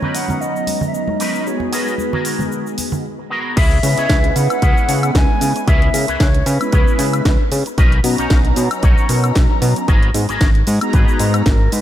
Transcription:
Already playing: F#3 B3 C#4 D#4 C#5 A#5
0.02 C#4 D#4 A#4 B4, low conga
0.15 F#5, open hi-hat, cabasa
0.28 high conga, low conga, cabasa
0.41 D#5, cabasa
0.56 cabasa
0.67 open hi-hat, high conga, cabasa
0.81 low conga, cabasa
0.87 E5
0.94 D#5, cabasa
1.08 muted clean electric guitar stroke, high conga
1.20 C#4 D#4 A#4 B4, open hi-hat, cabasa
1.35 cabasa
1.40 D#5
1.45 G#3 B3 D#4 F#4 G#4 C#5, cabasa
1.60 high conga
1.72 B3 F#4 G#4 A#4 B4, open hi-hat, cabasa
1.88 cabasa
1.98 high conga, cabasa
2.13 B3 F#4 G#4 A#4, low conga
2.25 open hi-hat, cabasa
2.39 high conga, low conga, cabasa
2.52 cabasa
2.67 cabasa
2.78 open hi-hat, high conga, cabasa
2.92 low conga, cabasa
3.18 muted clean electric guitar stroke
3.30 B3 F#4 G#4 A#4
3.56 C#2 C#4 E4 G#4 B4 E5, kick, closed hi-hat, crash, cabasa
3.71 closed hi-hat
3.83 C#3 G#3 B3 C#4 E4 B4, open hi-hat, cabasa
3.97 C#2 C#4 E4 G#4 C#5, closed hi-hat, cabasa
4.09 C#2, kick, snare, closed hi-hat, cabasa
4.24 closed hi-hat
4.35 C#3 F#5, muted clean electric guitar stroke, open hi-hat, cabasa
4.50 G#3 B3 C#4 E4 B4, closed hi-hat, cabasa, high woodblock
4.61 C#2 C#4 E4 G#4 B4, kick, closed hi-hat, cabasa
4.77 cabasa
4.88 C#3 G#3 B3 C#4 E4 B4, open hi-hat, cabasa
5.02 G#3 B3 C#4 E4 B4, closed hi-hat, cabasa, high woodblock
5.15 C#2 G#5, kick, snare, closed hi-hat, cabasa
5.41 C#3, muted clean electric guitar stroke, open hi-hat, cabasa
5.55 muted clean electric guitar stroke, closed hi-hat, cabasa
5.67 C#2 C#4 E4 G#4 B4 E5, kick, closed hi-hat, cabasa
5.82 closed hi-hat
5.94 C#3 G#3 B3 C#4 E4 A#4, open hi-hat, cabasa
6.08 C#2 C#4 E4 G#4 B4, closed hi-hat, cabasa
6.20 C#2 C#5, kick, snare, closed hi-hat, cabasa
6.34 closed hi-hat
6.46 C#3 B4, muted clean electric guitar stroke, open hi-hat, cabasa
6.60 G#3 B3 C#4 E4 B4, closed hi-hat, cabasa, high woodblock
6.72 C#2 C#4 E4 G#4 B4, kick, closed hi-hat, cabasa
6.88 cabasa
6.99 C#3, open hi-hat, cabasa
7.13 closed hi-hat, cabasa, high woodblock
7.25 C#2 G#3 B3 C#4 E4 B4, kick, snare, closed hi-hat, cabasa
7.51 C#3, muted clean electric guitar stroke, open hi-hat, cabasa
7.66 muted clean electric guitar stroke, closed hi-hat, cabasa
7.78 B1 C#4 D#4 A#4 B4, kick, closed hi-hat, cabasa
7.92 closed hi-hat
8.03 B2 F#3 B3 C#4 D#4 A#5, open hi-hat, cabasa
8.18 B1 C#4 D#4 A#4 C#5, closed hi-hat, cabasa
8.30 B1, kick, snare, closed hi-hat, cabasa
8.45 closed hi-hat
8.56 B2, muted clean electric guitar stroke, open hi-hat, cabasa
8.71 F#3 B3 C#4 D#4 A#5, closed hi-hat, cabasa, high woodblock
8.83 B1 C#4 D#4 A#4 C#5, kick, closed hi-hat, cabasa
8.98 cabasa
9.09 B2 F#3 B3 C#4 D#4 A#4, open hi-hat, cabasa
9.23 F#3 B3 C#4 D#4 A#5, closed hi-hat, cabasa, high woodblock
9.35 B1, kick, snare, closed hi-hat, cabasa
9.62 B2, muted clean electric guitar stroke, open hi-hat, cabasa
9.76 muted clean electric guitar stroke, closed hi-hat, cabasa
9.88 G#1 B3 F#4 G#4 A#4, kick, closed hi-hat, cabasa
10.03 closed hi-hat
10.14 G#2 G#3 B3 D#4 F#4 G#4, open hi-hat, cabasa
10.29 G#1 B3 F#4 G#4 A#4, closed hi-hat, cabasa
10.41 G#1, kick, snare, closed hi-hat, cabasa
10.55 closed hi-hat
10.67 G#2, muted clean electric guitar stroke, open hi-hat, cabasa
10.81 G#3 B3 D#4 F#4 A#5, closed hi-hat, cabasa, high woodblock
10.93 G#1 B3 F#4 G#4 B4, kick, closed hi-hat, cabasa
11.08 cabasa
11.19 G#2, open hi-hat, cabasa
11.34 closed hi-hat, cabasa, high woodblock
11.46 G#1 G#3 B3 D#4 A#4, kick, snare, closed hi-hat, cabasa
11.72 G#2 B4, muted clean electric guitar stroke, open hi-hat, cabasa

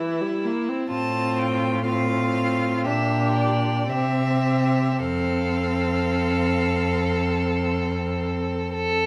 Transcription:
Already playing: E3 E4
0.21 G3
0.45 A#3
0.69 C4
0.90 A2 C4 F4 A5
1.38 G5
1.85 C4 F4 F5
2.85 A#2 D4 G4 E5
3.37 D5
3.89 C3 C4 G4 E5
4.99 F2 C4 A4 F5
8.73 A4

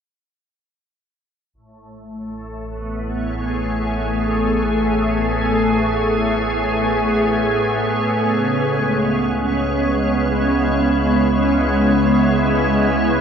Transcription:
1.54 A1 A2
2.17 A3
2.67 B3
3.06 C#5
3.22 G#4
8.20 C#2 C#3
8.56 G#3
9.99 E4

